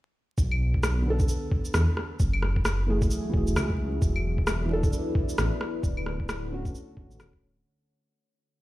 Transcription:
0.38 detuned saw bass B1, kick, shaker
0.51 claves
0.74 kick
0.83 cross-stick, claves, shaker
1.02 felt piano D3
1.06 felt piano B3 A4
1.19 kick, shaker
1.28 shaker
1.52 kick
1.65 shaker
1.74 detuned saw bass E2, cross-stick, shaker
1.97 cross-stick
2.20 detuned saw bass F#1, ambient pad F#4, kick, shaker
2.33 claves
2.42 ambient pad E5, cross-stick
2.56 kick
2.65 cross-stick, claves, shaker
2.86 felt piano E3 A3 G#4
3.02 kick, shaker
3.11 shaker
3.29 felt piano E3
3.33 detuned saw bass E1, felt piano A3 G#4, kick
3.47 shaker
3.56 detuned saw bass C#2, cross-stick, claves, shaker
3.70 kick
4.02 detuned saw bass E1, ambient pad E4, kick, shaker
4.16 claves
4.20 ambient pad B4 D5
4.38 kick
4.47 cross-stick, claves, shaker
4.65 felt piano E3 D4
4.73 felt piano A4
4.83 kick, shaker
4.93 shaker
5.15 kick
5.29 shaker
5.38 detuned saw bass A1, cross-stick, shaker
5.61 cross-stick
5.83 detuned saw bass D1, ambient pad D3, kick, shaker
5.97 ambient pad A4, claves
6.04 ambient pad F#5, cross-stick
6.20 kick
6.29 cross-stick, claves, shaker
6.50 felt piano D3 C#4 F#4
6.65 kick, shaker
6.75 shaker
6.95 detuned saw bass F#1, felt piano D3 C#4 F#4, kick
7.07 detuned saw bass A1, felt piano D3 C#4
7.11 felt piano F#4, shaker
7.20 detuned saw bass D1, cross-stick, claves, shaker
7.33 kick

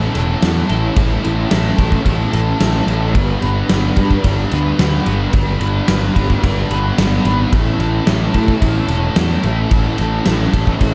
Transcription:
Already playing: overdriven electric guitar A2 A3 C#4 E4 A4
0.14 picked electric bass E1, overdriven electric guitar C#4 E4 A4, ride
0.41 picked electric bass E2, overdriven electric guitar A3 C#4 E4 A4, snare, ride
0.68 picked electric bass A1, overdriven electric guitar C#4 E4 A4, ride
0.95 picked electric bass A1, overdriven electric guitar A2 A3 C#4 E4 A4, kick, ride
1.23 picked electric bass A1, overdriven electric guitar C#4 E4 A4, ride
1.50 picked electric bass A1, overdriven electric guitar A3 C#4 E4 A4, snare, ride
1.77 picked electric bass A1, overdriven electric guitar C#4 E4 A4, kick, ride
1.92 kick
2.04 picked electric bass A1, overdriven electric guitar A2 A3 C#4 E4 A4, kick, ride
2.32 picked electric bass A1, overdriven electric guitar C#4 E4 A4, ride
2.60 picked electric bass A1, overdriven electric guitar A3 C#4 E4 A4, snare, ride
2.87 picked electric bass A1, overdriven electric guitar C#4 E4 A4, ride
3.14 picked electric bass G1, overdriven electric guitar G3 B3 D4 B4, kick, ride
3.42 picked electric bass G1, overdriven electric guitar B3 D4 B4, ride
3.69 picked electric bass G1, overdriven electric guitar G3 B3 D4 B4, snare, ride
3.96 picked electric bass G2, overdriven electric guitar B3 D4 B4, kick, ride
4.11 kick
4.24 picked electric bass G1, overdriven electric guitar G3 B3 D4 B4, kick, ride
4.51 picked electric bass D2, overdriven electric guitar B3 D4 B4, ride
4.78 picked electric bass D2, overdriven electric guitar G3 B3 D4 B4, snare, ride
5.06 picked electric bass G1, overdriven electric guitar B3 D4 B4, ride
5.33 picked electric bass G1, overdriven electric guitar G3 B3 D4 B4, kick, ride
5.60 picked electric bass G1, overdriven electric guitar B3 D4 B4, ride
5.87 picked electric bass G1, overdriven electric guitar G3 B3 D4 B4, snare, ride
6.15 picked electric bass G1, overdriven electric guitar B3 D4 B4, kick, ride
6.30 kick
6.42 picked electric bass G1, overdriven electric guitar G3 B3 D4 B4, kick, ride
6.70 picked electric bass G1, overdriven electric guitar B3 D4 B4, ride
6.98 picked electric bass G1, overdriven electric guitar G3 B3 D4 B4, snare, ride
7.25 picked electric bass G#1, overdriven electric guitar B3 D4 B4, ride
7.52 picked electric bass A1, overdriven electric guitar A2 A3 C#4 E4 A4, kick, ride
7.79 picked electric bass A1, overdriven electric guitar C#4 E4 A4, ride
8.06 picked electric bass A1, overdriven electric guitar A3 C#4 E4 A4, snare, ride
8.34 picked electric bass A2, overdriven electric guitar C#4 E4 A4, kick, ride
8.48 kick
8.61 picked electric bass A1, overdriven electric guitar A2 A3 C#4 E4 A4, kick, ride
8.88 picked electric bass E1, overdriven electric guitar C#4 E4 A4, ride
9.16 picked electric bass E2, overdriven electric guitar A3 C#4 E4 A4, snare, ride
9.43 picked electric bass A1, overdriven electric guitar C#4 E4 A4, ride
9.70 picked electric bass A1, overdriven electric guitar A2 A3 C#4 E4 A4, kick, ride
9.98 picked electric bass A1, overdriven electric guitar C#4 E4 A4, ride
10.26 picked electric bass A1, overdriven electric guitar A3 C#4 E4 A4, snare, ride
10.52 picked electric bass A1, overdriven electric guitar C#4 E4 A4, kick, ride
10.67 kick
10.80 picked electric bass A1, overdriven electric guitar A2 A3 C#4 E4 A4, kick, ride

